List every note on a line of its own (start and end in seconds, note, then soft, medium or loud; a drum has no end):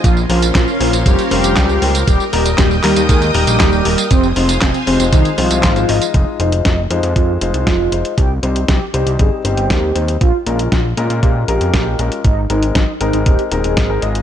0.04 0.26 A#1 medium
0.04 0.21 F3 medium
0.04 2.06 C#4 medium
0.04 0.21 F4 loud
0.04 4.07 A#4 medium
0.04 2.06 F5 medium
0.04 2.06 C6 medium
0.04 kick loud
0.04 closed hi-hat medium
0.04 tambourine medium
0.17 tambourine soft
0.29 0.51 A#1 loud
0.29 0.46 F3 medium
0.29 0.60 A#3 medium
0.29 0.60 C#4 medium
0.29 0.60 F4 medium
0.29 0.46 F4 medium
0.29 0.60 C5 medium
0.29 open hi-hat loud
0.42 closed hi-hat medium
0.42 tambourine medium
0.55 0.66 A#1 medium
0.55 0.71 F3 medium
0.55 0.72 F4 medium
0.55 kick loud
0.55 snare loud
0.55 clap medium
0.55 closed hi-hat medium
0.55 tambourine medium
0.68 tambourine soft
0.80 0.91 A#1 medium
0.80 0.97 F3 medium
0.80 1.28 A#3 medium
0.80 1.28 C#4 medium
0.80 1.28 F4 medium
0.80 0.97 F4 medium
0.80 1.28 C5 loud
0.80 open hi-hat loud
0.93 1.04 A#1 medium
0.93 closed hi-hat medium
0.93 tambourine medium
1.06 1.17 F1 medium
1.06 1.22 G3 medium
1.06 1.22 G4 medium
1.06 kick loud
1.06 closed hi-hat medium
1.06 tambourine medium
1.19 closed hi-hat soft
1.19 tambourine soft
1.31 1.42 F1 medium
1.31 1.97 G3 medium
1.31 1.79 A#3 medium
1.31 1.79 C#4 medium
1.31 1.79 F4 medium
1.31 1.97 G4 loud
1.31 1.79 C5 loud
1.31 open hi-hat loud
1.44 1.55 F1 medium
1.44 closed hi-hat medium
1.44 tambourine medium
1.57 1.79 C#2 loud
1.57 kick loud
1.57 snare loud
1.57 clap medium
1.57 closed hi-hat medium
1.57 tambourine medium
1.69 tambourine soft
1.82 2.04 C#2 loud
1.82 2.01 A#3 medium
1.82 2.01 C#4 medium
1.82 2.01 F4 medium
1.82 2.01 C5 medium
1.82 open hi-hat loud
1.95 closed hi-hat medium
1.95 tambourine medium
2.07 2.18 D#1 loud
2.07 2.24 G3 medium
2.07 2.24 G4 loud
2.07 4.09 D#5 medium
2.07 4.09 G5 medium
2.07 6.10 D#6 medium
2.07 kick loud
2.07 closed hi-hat medium
2.07 tambourine soft
2.20 tambourine soft
2.33 2.55 D#1 loud
2.33 2.63 G3 medium
2.33 2.50 G3 medium
2.33 2.63 A#3 medium
2.33 2.63 D#4 medium
2.33 2.50 G4 medium
2.33 2.63 A#4 medium
2.33 open hi-hat loud
2.46 closed hi-hat medium
2.46 tambourine medium
2.58 2.80 D#1 loud
2.58 2.75 G3 medium
2.58 2.75 G4 medium
2.58 kick loud
2.58 snare loud
2.58 clap medium
2.58 closed hi-hat medium
2.58 tambourine soft
2.71 tambourine soft
2.84 2.95 D#2 medium
2.84 3.32 G3 medium
2.84 3.00 G3 medium
2.84 3.32 A#3 medium
2.84 3.31 D#4 medium
2.84 3.00 G4 medium
2.84 3.32 A#4 loud
2.84 clap medium
2.84 open hi-hat loud
2.96 3.07 D#2 medium
2.96 closed hi-hat medium
2.96 tambourine medium
3.09 3.31 D#2 medium
3.09 3.26 G#3 medium
3.09 3.26 G#4 medium
3.09 kick loud
3.09 closed hi-hat medium
3.09 tambourine soft
3.22 closed hi-hat soft
3.22 tambourine soft
3.34 3.46 D#1 medium
3.34 4.01 G3 medium
3.34 3.82 G3 medium
3.34 3.82 A#3 medium
3.34 3.82 D#4 medium
3.34 4.01 G4 loud
3.34 3.82 A#4 loud
3.34 open hi-hat loud
3.47 3.58 A#1 medium
3.47 closed hi-hat medium
3.47 tambourine medium
3.60 3.82 D#1 medium
3.60 kick loud
3.60 snare loud
3.60 clap medium
3.60 closed hi-hat medium
3.60 tambourine medium
3.73 tambourine soft
3.85 3.96 D#1 medium
3.85 4.04 G3 medium
3.85 4.04 A#3 medium
3.85 4.04 D#4 medium
3.85 4.04 A#4 medium
3.85 open hi-hat loud
3.98 closed hi-hat medium
3.98 tambourine medium
4.11 4.33 F1 loud
4.11 4.27 C3 medium
4.11 4.27 C4 loud
4.11 6.12 C5 medium
4.11 6.12 F5 medium
4.11 6.12 G#5 medium
4.11 kick loud
4.11 closed hi-hat medium
4.11 tambourine soft
4.23 tambourine soft
4.36 4.58 F1 loud
4.36 4.53 C3 medium
4.36 4.67 G#3 medium
4.36 4.53 C4 medium
4.36 4.67 D#4 medium
4.36 4.67 F4 medium
4.36 4.67 C5 medium
4.36 open hi-hat loud
4.49 closed hi-hat medium
4.49 tambourine medium
4.62 4.73 F1 medium
4.62 4.78 C3 medium
4.62 4.78 C4 medium
4.62 kick loud
4.62 snare loud
4.62 clap loud
4.62 closed hi-hat medium
4.62 tambourine soft
4.74 closed hi-hat soft
4.74 tambourine soft
4.87 4.98 F1 medium
4.87 5.04 C3 medium
4.87 5.35 G#3 medium
4.87 5.04 C4 medium
4.87 5.35 D#4 medium
4.87 5.35 F4 medium
4.87 5.35 C5 loud
4.87 open hi-hat loud
5.00 5.11 F1 loud
5.00 closed hi-hat medium
5.00 tambourine medium
5.13 5.24 C2 medium
5.13 5.29 D#3 medium
5.13 5.29 D#4 medium
5.13 kick loud
5.13 closed hi-hat medium
5.13 tambourine soft
5.25 closed hi-hat soft
5.25 tambourine soft
5.38 5.49 C2 medium
5.38 6.04 F3 medium
5.38 5.73 G#3 medium
5.38 5.73 D#4 medium
5.38 6.04 F4 loud
5.38 5.73 F4 medium
5.38 5.73 C5 loud
5.38 open hi-hat loud
5.51 5.62 C2 medium
5.51 closed hi-hat medium
5.51 tambourine medium
5.63 5.85 G#1 loud
5.63 kick loud
5.63 snare loud
5.63 clap medium
5.63 closed hi-hat medium
5.63 tambourine soft
5.76 5.87 G#3 medium
5.76 5.87 D#4 medium
5.76 5.87 F4 medium
5.76 5.87 C5 loud
5.76 closed hi-hat soft
5.76 tambourine soft
5.89 6.00 G#1 loud
5.89 6.37 G#3 loud
5.89 6.37 D#4 medium
5.89 6.37 F4 medium
5.89 6.37 D#5 loud
5.89 open hi-hat loud
6.02 closed hi-hat medium
6.02 tambourine medium
6.14 6.25 F1 loud
6.14 6.31 D#4 loud
6.14 kick loud
6.14 closed hi-hat medium
6.40 6.62 F1 loud
6.40 6.70 G#3 medium
6.40 6.56 D#4 medium
6.40 6.70 D#4 medium
6.40 6.70 F4 medium
6.40 6.70 C5 medium
6.40 closed hi-hat medium
6.52 closed hi-hat medium
6.65 6.87 F1 medium
6.65 6.82 D#4 medium
6.65 kick loud
6.65 snare loud
6.65 closed hi-hat medium
6.90 7.01 F2 medium
6.90 7.38 G#3 medium
6.90 7.07 D#4 medium
6.90 7.38 D#4 medium
6.90 7.38 F4 medium
6.90 7.38 C5 loud
6.90 closed hi-hat medium
7.03 7.14 F2 medium
7.03 closed hi-hat medium
7.16 7.38 F2 medium
7.16 7.33 F4 medium
7.16 kick loud
7.16 closed hi-hat medium
7.41 7.52 F1 medium
7.41 7.89 G#3 medium
7.41 7.89 D#4 medium
7.41 8.07 F4 loud
7.41 7.89 F4 medium
7.41 7.89 C5 loud
7.41 closed hi-hat medium
7.54 7.65 C2 medium
7.54 closed hi-hat medium
7.67 7.89 F1 medium
7.67 kick loud
7.67 snare loud
7.67 closed hi-hat medium
7.92 8.03 F1 medium
7.92 8.11 G#3 medium
7.92 8.11 D#4 medium
7.92 8.11 F4 medium
7.92 8.11 C5 medium
7.92 closed hi-hat medium
8.05 closed hi-hat medium
8.18 8.40 C2 medium
8.18 8.34 G4 loud
8.18 kick loud
8.18 closed hi-hat medium
8.43 8.65 C2 loud
8.43 8.73 G3 medium
8.43 8.73 C4 medium
8.43 8.73 D#4 medium
8.43 8.60 G4 medium
8.43 8.73 C5 medium
8.43 closed hi-hat medium
8.56 closed hi-hat medium
8.68 8.80 C2 medium
8.68 8.85 G4 medium
8.68 kick loud
8.68 snare loud
8.68 closed hi-hat medium
8.94 9.05 C2 medium
8.94 9.42 G3 medium
8.94 9.42 C4 medium
8.94 9.42 D#4 medium
8.94 9.11 G4 medium
8.94 9.42 C5 loud
8.94 closed hi-hat medium
9.07 9.18 C2 medium
9.07 closed hi-hat medium
9.19 9.30 G1 medium
9.19 9.36 G#4 medium
9.19 kick loud
9.19 closed hi-hat medium
9.45 9.56 G1 medium
9.45 9.93 G3 medium
9.45 9.93 C4 medium
9.45 9.93 D#4 medium
9.45 10.11 G4 loud
9.45 9.93 C5 medium
9.45 closed hi-hat medium
9.57 9.68 G1 medium
9.57 closed hi-hat medium
9.70 9.92 D#2 loud
9.70 kick loud
9.70 snare loud
9.70 closed hi-hat medium
9.95 10.17 D#2 medium
9.95 10.15 G3 medium
9.95 10.15 C4 medium
9.95 10.15 D#4 medium
9.95 10.15 C5 medium
9.95 closed hi-hat medium
10.08 closed hi-hat medium
10.21 10.32 A#1 medium
10.21 10.38 F4 loud
10.21 kick loud
10.21 closed hi-hat medium
10.46 10.68 A#1 loud
10.46 10.77 G#3 medium
10.46 10.77 C#4 medium
10.46 10.77 F4 medium
10.46 10.63 F4 medium
10.46 10.77 A#4 medium
10.46 closed hi-hat medium
10.59 closed hi-hat medium
10.72 10.94 A#1 medium
10.72 10.88 F4 medium
10.72 kick loud
10.72 snare loud
10.72 closed hi-hat medium
10.97 11.08 A#2 medium
10.97 11.45 G#3 medium
10.97 11.45 C#4 medium
10.97 11.14 F4 medium
10.97 11.45 F4 medium
10.97 11.45 A#4 loud
10.97 closed hi-hat medium
11.10 11.21 A#2 medium
11.10 closed hi-hat soft
11.23 11.45 A#2 medium
11.23 11.39 G4 medium
11.23 kick loud
11.23 closed hi-hat medium
11.48 11.59 A#1 medium
11.48 11.96 G#3 medium
11.48 11.96 C#4 medium
11.48 11.96 F4 medium
11.48 12.14 G4 loud
11.48 11.96 A#4 loud
11.48 closed hi-hat medium
11.61 11.72 F2 medium
11.61 closed hi-hat soft
11.74 11.96 A#1 medium
11.74 kick loud
11.74 snare loud
11.74 closed hi-hat medium
11.99 12.10 A#1 medium
11.99 12.18 G#3 medium
11.99 12.18 C#4 medium
11.99 12.18 F4 medium
11.99 12.18 A#4 medium
11.99 closed hi-hat medium
12.12 closed hi-hat soft
12.24 12.46 G#1 medium
12.24 12.41 D#4 loud
12.24 kick loud
12.24 closed hi-hat medium
12.50 12.72 G#1 loud
12.50 12.80 G#3 medium
12.50 12.80 C4 medium
12.50 12.80 D#4 medium
12.50 12.67 D#4 medium
12.50 12.80 A#4 medium
12.50 closed hi-hat medium
12.63 closed hi-hat medium
12.75 12.86 G#1 medium
12.75 12.92 D#4 medium
12.75 kick loud
12.75 snare loud
12.75 closed hi-hat medium
13.01 13.12 G#1 medium
13.01 13.49 G#3 medium
13.01 13.49 C4 medium
13.01 13.49 D#4 medium
13.01 13.17 D#4 medium
13.01 13.49 A#4 loud
13.01 closed hi-hat medium
13.13 13.24 G#1 medium
13.13 closed hi-hat soft
13.26 13.37 D#1 medium
13.26 13.43 G4 medium
13.26 kick loud
13.26 closed hi-hat medium
13.39 closed hi-hat soft
13.51 13.62 D#1 medium
13.51 13.87 G#3 medium
13.51 13.87 C4 medium
13.51 13.87 D#4 medium
13.51 14.18 G#4 loud
13.51 13.87 A#4 loud
13.51 closed hi-hat medium
13.64 13.75 D#1 medium
13.64 closed hi-hat soft
13.77 13.99 G#1 medium
13.77 kick loud
13.77 snare loud
13.77 closed hi-hat medium
13.90 14.01 G#3 medium
13.90 14.01 C4 medium
13.90 14.01 D#4 medium
13.90 14.01 A#4 loud
14.02 14.22 G#1 medium
14.02 14.22 G#3 medium
14.02 14.22 D#4 medium
14.02 14.22 F4 medium
14.02 14.22 D#5 loud
14.02 closed hi-hat medium
14.15 closed hi-hat soft